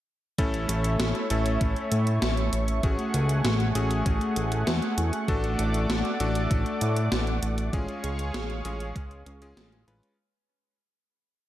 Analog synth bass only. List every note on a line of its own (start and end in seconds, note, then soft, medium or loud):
0.38 0.66 A1 loud
0.69 0.97 A1 loud
1.00 1.14 A1 medium
1.31 1.58 A1 medium
1.61 1.75 A1 loud
1.92 2.19 A2 loud
2.22 2.50 A1 loud
2.53 2.81 A1 medium
2.84 2.97 A1 loud
3.14 3.42 C#2 loud
3.45 3.73 A1 medium
3.75 4.03 A1 medium
4.06 4.20 A1 medium
4.37 4.64 A1 medium
4.67 4.81 E2 medium
4.98 5.12 E2 medium
5.28 5.56 A1 loud
5.59 5.87 A1 loud
5.90 6.03 A1 medium
6.20 6.48 A1 medium
6.51 6.65 A1 medium
6.82 7.09 A2 loud
7.12 7.40 A1 loud
7.43 7.70 A1 medium
7.73 7.87 A1 loud
8.04 8.32 C#2 loud
8.34 8.62 A1 medium
8.65 8.93 A1 medium
8.96 9.23 C#2 medium
9.26 9.54 C#2 loud
9.57 9.85 A1 medium
9.88 10.01 A1 medium